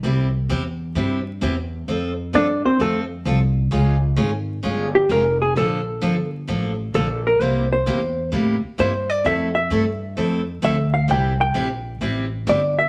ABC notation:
X:1
M:4/4
L:1/8
Q:"Swing" 1/4=130
K:F
V:1 name="Hollow-body jazz guitar"
z8 | z2 [Dd] [Cc] [A,A] z3 | z4 z G B _A | A3 z3 A B |
c c3 z2 c d | e e3 z2 e f | g g3 z2 d e |]
V:2 name="Steel-string acoustic guitar"
[C,G,CEG] z [C,G,CEG] z [C,G,CEG] z [C,G,CEG] z | [F,CFA] z [F,CFA] z [F,CFA] z [F,CFA] z | [_D,_A,_DF_A] z [D,A,DFA] z [D,A,DFA] z [D,A,DFA] z | [D,F,B,DA] z [D,F,B,DA] z [D,F,B,DA] z [D,F,B,DA] z |
[C,G,B,EG] z [C,G,B,EG] z [C,G,B,EG] z [C,G,B,EG] z | [F,A,CEA] z [F,A,CEA] z [F,A,CEA] z [F,A,CEA] z | [C,G,CEG] z [C,G,CEG] z [C,G,CEG] z [C,G,CEG] z |]
V:3 name="Upright bass" clef=bass
C,,2 E,,2 G,,2 E,,2 | F,,2 G,, z F,,2 C,,2 | _D,,2 _A,,,2 G,,,2 F,,,2 | B,,,2 G,,,2 A,,,2 B,,,2 |
C,,2 E,,2 A,, z G,,2 | F,,2 G,,2 F,,2 D,,2 | C,,2 B,,,2 A,,,2 G,,,2 |]